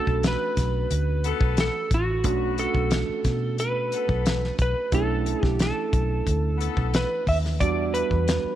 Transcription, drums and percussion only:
0, 0, Header, 1, 2, 480
1, 0, Start_track
1, 0, Key_signature, 2, "minor"
1, 0, Tempo, 668896
1, 1612, Time_signature, 4, 2, 24, 8
1, 6138, End_track
2, 0, Start_track
2, 0, Title_t, "Drums"
2, 52, Note_on_c, 9, 36, 69
2, 123, Note_off_c, 9, 36, 0
2, 167, Note_on_c, 9, 42, 69
2, 175, Note_on_c, 9, 38, 104
2, 239, Note_off_c, 9, 42, 0
2, 247, Note_off_c, 9, 38, 0
2, 409, Note_on_c, 9, 42, 63
2, 410, Note_on_c, 9, 36, 84
2, 417, Note_on_c, 9, 38, 35
2, 481, Note_off_c, 9, 42, 0
2, 482, Note_off_c, 9, 36, 0
2, 488, Note_off_c, 9, 38, 0
2, 650, Note_on_c, 9, 42, 79
2, 722, Note_off_c, 9, 42, 0
2, 890, Note_on_c, 9, 42, 65
2, 962, Note_off_c, 9, 42, 0
2, 1009, Note_on_c, 9, 36, 89
2, 1081, Note_off_c, 9, 36, 0
2, 1127, Note_on_c, 9, 42, 83
2, 1135, Note_on_c, 9, 38, 107
2, 1199, Note_off_c, 9, 42, 0
2, 1206, Note_off_c, 9, 38, 0
2, 1370, Note_on_c, 9, 36, 82
2, 1370, Note_on_c, 9, 42, 64
2, 1441, Note_off_c, 9, 42, 0
2, 1442, Note_off_c, 9, 36, 0
2, 1606, Note_on_c, 9, 42, 86
2, 1610, Note_on_c, 9, 36, 96
2, 1678, Note_off_c, 9, 42, 0
2, 1682, Note_off_c, 9, 36, 0
2, 1851, Note_on_c, 9, 42, 60
2, 1922, Note_off_c, 9, 42, 0
2, 1970, Note_on_c, 9, 36, 74
2, 2042, Note_off_c, 9, 36, 0
2, 2085, Note_on_c, 9, 42, 82
2, 2093, Note_on_c, 9, 38, 96
2, 2157, Note_off_c, 9, 42, 0
2, 2165, Note_off_c, 9, 38, 0
2, 2328, Note_on_c, 9, 42, 64
2, 2331, Note_on_c, 9, 36, 80
2, 2336, Note_on_c, 9, 38, 35
2, 2400, Note_off_c, 9, 42, 0
2, 2402, Note_off_c, 9, 36, 0
2, 2408, Note_off_c, 9, 38, 0
2, 2572, Note_on_c, 9, 42, 78
2, 2643, Note_off_c, 9, 42, 0
2, 2813, Note_on_c, 9, 42, 60
2, 2885, Note_off_c, 9, 42, 0
2, 2935, Note_on_c, 9, 36, 83
2, 3006, Note_off_c, 9, 36, 0
2, 3054, Note_on_c, 9, 42, 73
2, 3062, Note_on_c, 9, 38, 111
2, 3126, Note_off_c, 9, 42, 0
2, 3134, Note_off_c, 9, 38, 0
2, 3186, Note_on_c, 9, 38, 33
2, 3258, Note_off_c, 9, 38, 0
2, 3290, Note_on_c, 9, 42, 57
2, 3292, Note_on_c, 9, 36, 81
2, 3362, Note_off_c, 9, 42, 0
2, 3364, Note_off_c, 9, 36, 0
2, 3530, Note_on_c, 9, 42, 72
2, 3533, Note_on_c, 9, 36, 107
2, 3602, Note_off_c, 9, 42, 0
2, 3605, Note_off_c, 9, 36, 0
2, 3776, Note_on_c, 9, 42, 63
2, 3848, Note_off_c, 9, 42, 0
2, 3896, Note_on_c, 9, 36, 77
2, 3904, Note_on_c, 9, 38, 30
2, 3968, Note_off_c, 9, 36, 0
2, 3976, Note_off_c, 9, 38, 0
2, 4013, Note_on_c, 9, 42, 78
2, 4021, Note_on_c, 9, 38, 99
2, 4085, Note_off_c, 9, 42, 0
2, 4093, Note_off_c, 9, 38, 0
2, 4255, Note_on_c, 9, 36, 86
2, 4257, Note_on_c, 9, 42, 57
2, 4327, Note_off_c, 9, 36, 0
2, 4328, Note_off_c, 9, 42, 0
2, 4497, Note_on_c, 9, 36, 68
2, 4498, Note_on_c, 9, 42, 72
2, 4569, Note_off_c, 9, 36, 0
2, 4569, Note_off_c, 9, 42, 0
2, 4740, Note_on_c, 9, 42, 63
2, 4812, Note_off_c, 9, 42, 0
2, 4858, Note_on_c, 9, 36, 89
2, 4929, Note_off_c, 9, 36, 0
2, 4977, Note_on_c, 9, 42, 82
2, 4985, Note_on_c, 9, 38, 111
2, 5049, Note_off_c, 9, 42, 0
2, 5057, Note_off_c, 9, 38, 0
2, 5218, Note_on_c, 9, 36, 79
2, 5218, Note_on_c, 9, 46, 71
2, 5290, Note_off_c, 9, 36, 0
2, 5290, Note_off_c, 9, 46, 0
2, 5347, Note_on_c, 9, 38, 34
2, 5419, Note_off_c, 9, 38, 0
2, 5458, Note_on_c, 9, 36, 107
2, 5460, Note_on_c, 9, 42, 84
2, 5530, Note_off_c, 9, 36, 0
2, 5532, Note_off_c, 9, 42, 0
2, 5701, Note_on_c, 9, 42, 67
2, 5773, Note_off_c, 9, 42, 0
2, 5819, Note_on_c, 9, 36, 68
2, 5890, Note_off_c, 9, 36, 0
2, 5940, Note_on_c, 9, 42, 77
2, 5948, Note_on_c, 9, 38, 99
2, 6011, Note_off_c, 9, 42, 0
2, 6019, Note_off_c, 9, 38, 0
2, 6138, End_track
0, 0, End_of_file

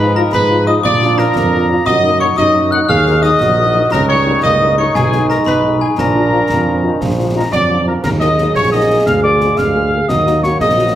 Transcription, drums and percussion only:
0, 0, Header, 1, 2, 480
1, 0, Start_track
1, 0, Key_signature, -6, "minor"
1, 0, Tempo, 342661
1, 1179, Time_signature, 6, 3, 24, 8
1, 15340, End_track
2, 0, Start_track
2, 0, Title_t, "Drums"
2, 462, Note_on_c, 9, 35, 74
2, 462, Note_on_c, 9, 38, 78
2, 602, Note_off_c, 9, 35, 0
2, 602, Note_off_c, 9, 38, 0
2, 1181, Note_on_c, 9, 35, 80
2, 1181, Note_on_c, 9, 38, 80
2, 1321, Note_off_c, 9, 35, 0
2, 1321, Note_off_c, 9, 38, 0
2, 1418, Note_on_c, 9, 38, 59
2, 1558, Note_off_c, 9, 38, 0
2, 1661, Note_on_c, 9, 38, 64
2, 1801, Note_off_c, 9, 38, 0
2, 1900, Note_on_c, 9, 35, 81
2, 1900, Note_on_c, 9, 38, 77
2, 2040, Note_off_c, 9, 35, 0
2, 2040, Note_off_c, 9, 38, 0
2, 2613, Note_on_c, 9, 35, 92
2, 2613, Note_on_c, 9, 38, 80
2, 2754, Note_off_c, 9, 35, 0
2, 2754, Note_off_c, 9, 38, 0
2, 3333, Note_on_c, 9, 35, 86
2, 3333, Note_on_c, 9, 38, 76
2, 3473, Note_off_c, 9, 35, 0
2, 3473, Note_off_c, 9, 38, 0
2, 4049, Note_on_c, 9, 35, 91
2, 4049, Note_on_c, 9, 38, 82
2, 4189, Note_off_c, 9, 35, 0
2, 4189, Note_off_c, 9, 38, 0
2, 4288, Note_on_c, 9, 38, 51
2, 4428, Note_off_c, 9, 38, 0
2, 4526, Note_on_c, 9, 38, 59
2, 4666, Note_off_c, 9, 38, 0
2, 4771, Note_on_c, 9, 35, 80
2, 4771, Note_on_c, 9, 38, 74
2, 4911, Note_off_c, 9, 35, 0
2, 4911, Note_off_c, 9, 38, 0
2, 5493, Note_on_c, 9, 35, 94
2, 5493, Note_on_c, 9, 38, 88
2, 5493, Note_on_c, 9, 49, 31
2, 5633, Note_off_c, 9, 35, 0
2, 5633, Note_off_c, 9, 38, 0
2, 5633, Note_off_c, 9, 49, 0
2, 6214, Note_on_c, 9, 35, 86
2, 6214, Note_on_c, 9, 38, 72
2, 6354, Note_off_c, 9, 35, 0
2, 6354, Note_off_c, 9, 38, 0
2, 6934, Note_on_c, 9, 35, 93
2, 6934, Note_on_c, 9, 38, 81
2, 7074, Note_off_c, 9, 35, 0
2, 7074, Note_off_c, 9, 38, 0
2, 7179, Note_on_c, 9, 38, 53
2, 7319, Note_off_c, 9, 38, 0
2, 7420, Note_on_c, 9, 38, 57
2, 7560, Note_off_c, 9, 38, 0
2, 7656, Note_on_c, 9, 35, 79
2, 7656, Note_on_c, 9, 38, 68
2, 7796, Note_off_c, 9, 35, 0
2, 7796, Note_off_c, 9, 38, 0
2, 8378, Note_on_c, 9, 35, 86
2, 8378, Note_on_c, 9, 38, 77
2, 8518, Note_off_c, 9, 35, 0
2, 8518, Note_off_c, 9, 38, 0
2, 9095, Note_on_c, 9, 35, 78
2, 9095, Note_on_c, 9, 38, 81
2, 9235, Note_off_c, 9, 35, 0
2, 9235, Note_off_c, 9, 38, 0
2, 9818, Note_on_c, 9, 35, 84
2, 9818, Note_on_c, 9, 38, 63
2, 9958, Note_off_c, 9, 35, 0
2, 9958, Note_off_c, 9, 38, 0
2, 10540, Note_on_c, 9, 35, 73
2, 10540, Note_on_c, 9, 38, 69
2, 10680, Note_off_c, 9, 35, 0
2, 10680, Note_off_c, 9, 38, 0
2, 11259, Note_on_c, 9, 35, 86
2, 11259, Note_on_c, 9, 38, 71
2, 11259, Note_on_c, 9, 49, 59
2, 11399, Note_off_c, 9, 35, 0
2, 11399, Note_off_c, 9, 38, 0
2, 11399, Note_off_c, 9, 49, 0
2, 11495, Note_on_c, 9, 38, 61
2, 11635, Note_off_c, 9, 38, 0
2, 11739, Note_on_c, 9, 38, 54
2, 11879, Note_off_c, 9, 38, 0
2, 11973, Note_on_c, 9, 35, 76
2, 11973, Note_on_c, 9, 38, 65
2, 12113, Note_off_c, 9, 35, 0
2, 12113, Note_off_c, 9, 38, 0
2, 12692, Note_on_c, 9, 35, 92
2, 12692, Note_on_c, 9, 38, 81
2, 12832, Note_off_c, 9, 35, 0
2, 12832, Note_off_c, 9, 38, 0
2, 13176, Note_on_c, 9, 38, 54
2, 13316, Note_off_c, 9, 38, 0
2, 13420, Note_on_c, 9, 35, 75
2, 13420, Note_on_c, 9, 38, 69
2, 13560, Note_off_c, 9, 35, 0
2, 13560, Note_off_c, 9, 38, 0
2, 14137, Note_on_c, 9, 35, 82
2, 14137, Note_on_c, 9, 38, 74
2, 14137, Note_on_c, 9, 49, 34
2, 14277, Note_off_c, 9, 35, 0
2, 14277, Note_off_c, 9, 38, 0
2, 14277, Note_off_c, 9, 49, 0
2, 14384, Note_on_c, 9, 38, 56
2, 14524, Note_off_c, 9, 38, 0
2, 14616, Note_on_c, 9, 38, 59
2, 14756, Note_off_c, 9, 38, 0
2, 14851, Note_on_c, 9, 35, 82
2, 14851, Note_on_c, 9, 38, 64
2, 14991, Note_off_c, 9, 35, 0
2, 14991, Note_off_c, 9, 38, 0
2, 15340, End_track
0, 0, End_of_file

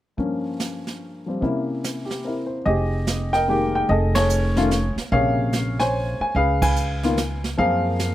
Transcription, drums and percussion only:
0, 0, Header, 1, 2, 480
1, 0, Start_track
1, 0, Key_signature, -4, "minor"
1, 0, Tempo, 411241
1, 214, Time_signature, 3, 2, 24, 8
1, 9509, End_track
2, 0, Start_track
2, 0, Title_t, "Drums"
2, 211, Note_on_c, 9, 36, 30
2, 214, Note_on_c, 9, 25, 42
2, 328, Note_off_c, 9, 36, 0
2, 695, Note_on_c, 9, 44, 48
2, 699, Note_on_c, 9, 38, 49
2, 811, Note_off_c, 9, 44, 0
2, 816, Note_off_c, 9, 38, 0
2, 1015, Note_on_c, 9, 38, 30
2, 1131, Note_off_c, 9, 38, 0
2, 1661, Note_on_c, 9, 36, 31
2, 1665, Note_off_c, 9, 25, 0
2, 1665, Note_on_c, 9, 25, 49
2, 1778, Note_off_c, 9, 36, 0
2, 2149, Note_on_c, 9, 44, 49
2, 2153, Note_on_c, 9, 38, 48
2, 2265, Note_off_c, 9, 44, 0
2, 2270, Note_off_c, 9, 38, 0
2, 2460, Note_on_c, 9, 38, 33
2, 2577, Note_off_c, 9, 38, 0
2, 3107, Note_on_c, 9, 36, 33
2, 3114, Note_off_c, 9, 25, 0
2, 3114, Note_on_c, 9, 25, 49
2, 3224, Note_off_c, 9, 36, 0
2, 3581, Note_on_c, 9, 44, 51
2, 3586, Note_on_c, 9, 38, 59
2, 3698, Note_off_c, 9, 44, 0
2, 3702, Note_off_c, 9, 38, 0
2, 3895, Note_on_c, 9, 38, 36
2, 4012, Note_off_c, 9, 38, 0
2, 4543, Note_on_c, 9, 36, 34
2, 4549, Note_off_c, 9, 25, 0
2, 4549, Note_on_c, 9, 25, 51
2, 4659, Note_off_c, 9, 36, 0
2, 4844, Note_on_c, 9, 51, 66
2, 4849, Note_on_c, 9, 38, 74
2, 4961, Note_off_c, 9, 51, 0
2, 4965, Note_off_c, 9, 38, 0
2, 5013, Note_on_c, 9, 44, 62
2, 5129, Note_off_c, 9, 44, 0
2, 5329, Note_on_c, 9, 38, 37
2, 5445, Note_off_c, 9, 38, 0
2, 5498, Note_on_c, 9, 44, 47
2, 5503, Note_on_c, 9, 38, 59
2, 5615, Note_off_c, 9, 44, 0
2, 5619, Note_off_c, 9, 38, 0
2, 5809, Note_on_c, 9, 38, 38
2, 5926, Note_off_c, 9, 38, 0
2, 5977, Note_on_c, 9, 36, 33
2, 5978, Note_off_c, 9, 25, 0
2, 5978, Note_on_c, 9, 25, 43
2, 6094, Note_off_c, 9, 36, 0
2, 6451, Note_on_c, 9, 44, 52
2, 6456, Note_on_c, 9, 38, 57
2, 6568, Note_off_c, 9, 44, 0
2, 6572, Note_off_c, 9, 38, 0
2, 6767, Note_on_c, 9, 38, 39
2, 6883, Note_off_c, 9, 38, 0
2, 7418, Note_off_c, 9, 25, 0
2, 7418, Note_on_c, 9, 25, 50
2, 7418, Note_on_c, 9, 36, 32
2, 7535, Note_off_c, 9, 36, 0
2, 7726, Note_on_c, 9, 36, 76
2, 7727, Note_on_c, 9, 51, 71
2, 7843, Note_off_c, 9, 36, 0
2, 7844, Note_off_c, 9, 51, 0
2, 7891, Note_on_c, 9, 44, 52
2, 8008, Note_off_c, 9, 44, 0
2, 8208, Note_on_c, 9, 38, 37
2, 8325, Note_off_c, 9, 38, 0
2, 8372, Note_on_c, 9, 44, 52
2, 8377, Note_on_c, 9, 38, 58
2, 8489, Note_off_c, 9, 44, 0
2, 8494, Note_off_c, 9, 38, 0
2, 8686, Note_on_c, 9, 38, 36
2, 8802, Note_off_c, 9, 38, 0
2, 8854, Note_off_c, 9, 25, 0
2, 8854, Note_on_c, 9, 25, 51
2, 8855, Note_on_c, 9, 36, 35
2, 8971, Note_off_c, 9, 36, 0
2, 9328, Note_on_c, 9, 44, 51
2, 9332, Note_on_c, 9, 38, 58
2, 9445, Note_off_c, 9, 44, 0
2, 9449, Note_off_c, 9, 38, 0
2, 9509, Note_off_c, 9, 25, 0
2, 9509, End_track
0, 0, End_of_file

